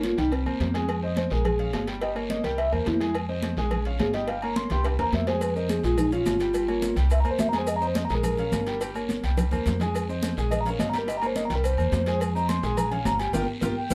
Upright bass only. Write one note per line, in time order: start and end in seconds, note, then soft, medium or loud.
0.00 0.12 G1 medium
0.18 0.44 C2 loud
0.46 0.59 E2 medium
0.60 1.26 F2 loud
1.31 1.71 A#1 medium
1.73 2.39 G1 medium
2.44 2.70 C2 medium
2.72 2.85 E2 medium
2.87 3.52 F2 loud
3.57 3.97 A#1 medium
4.00 4.65 G1 loud
4.70 4.97 C2 loud
4.99 5.12 E2 medium
5.13 5.78 F2 loud
5.83 6.23 A#1 loud
6.26 6.91 G1 loud
6.96 7.23 C2 loud
7.25 7.38 E2 medium
7.39 8.04 F2 loud
8.10 8.49 A#1 medium
8.52 9.18 G1 loud
9.23 9.50 C2 medium
9.52 9.65 E2 medium
9.66 10.31 F2 loud
10.37 10.76 A#1 medium
10.79 11.45 G1 loud
11.50 11.76 C2 loud
11.78 11.91 E2 medium
11.92 12.58 F2 loud
12.63 13.03 A#1 loud
13.05 13.32 G1 loud
13.33 13.44 G1 loud
13.62 13.73 G1 loud
13.90 13.94 C2 loud